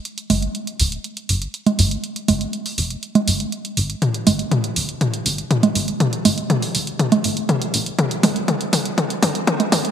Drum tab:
HH |xxoxxxoxxxoxxxox|xxoxxooxxxoxxxox|xxoxxxoxxxoxxxox|xxoxxooxxxoxxxox|
T2 |----------------|----------------|o---o---o---o---|o---o---o---o---|
CG |--O----------O--|--O------O------|--O----------O--|--O------O------|

HH |xxoxxxoxxxoxxxox|
T2 |o-o-o-o-o-o-o-o-|
CG |--O----------O--|